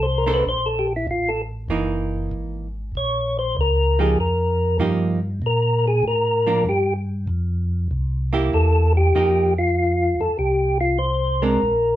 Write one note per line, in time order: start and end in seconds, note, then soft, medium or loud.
0.00 0.44 C2 medium
0.00 0.25 C5 medium
0.18 0.31 A#4 medium
0.26 0.44 A#3 medium
0.26 0.44 D4 medium
0.26 0.44 A4 medium
0.26 0.44 C5 medium
0.34 0.44 B4 medium
0.45 1.06 A#1 medium
0.45 0.68 C5 medium
0.66 0.87 A4 medium
0.79 0.93 G4 medium
0.96 1.07 E4 medium
1.07 1.68 A1 medium
1.07 1.30 F4 medium
1.29 1.42 A4 medium
1.69 2.30 F#1 medium
1.69 2.66 E3 medium
1.69 2.67 A#3 medium
1.69 2.67 D#4 medium
2.31 2.92 G#1 medium
2.95 3.55 A#1 medium
2.95 3.37 C#5 medium
3.39 3.57 C5 medium
3.57 4.17 C#2 medium
3.57 4.00 A#4 medium
3.99 4.16 F3 medium
3.99 4.17 A#3 medium
3.99 4.17 D#4 medium
3.99 4.17 G4 medium
3.99 4.18 G#4 medium
4.18 4.78 F2 medium
4.18 4.77 A#4 medium
4.79 5.40 G2 medium
4.79 5.18 F3 medium
4.79 5.19 A#3 medium
4.79 5.19 D#4 medium
4.79 5.19 G4 medium
5.42 6.02 A#2 medium
5.46 5.86 A#4 medium
5.88 6.05 G#4 medium
6.03 6.64 A2 medium
6.07 6.64 A#4 medium
6.47 6.64 F3 medium
6.47 6.64 A#3 medium
6.47 6.65 D4 medium
6.66 7.26 G2 medium
6.66 6.94 G4 medium
7.27 7.88 F2 medium
7.91 8.51 C2 medium
8.33 9.10 A#3 medium
8.33 9.10 E4 medium
8.33 9.11 G4 medium
8.53 9.13 E2 medium
8.53 8.93 A4 loud
8.97 9.54 G4 loud
9.15 10.15 F2 medium
9.15 9.53 F3 medium
9.15 9.53 A#3 medium
9.15 9.53 D#4 medium
9.15 9.54 G4 medium
9.58 10.21 F4 loud
10.19 10.29 F2 soft
10.19 10.37 A4 medium
10.38 11.58 C2 medium
10.38 10.78 G4 medium
10.81 10.98 F4 medium
10.98 11.43 C5 medium
11.42 11.60 G#3 medium
11.42 11.60 C4 medium
11.42 11.60 D4 medium
11.42 11.96 A#4 loud
11.62 11.96 A#1 medium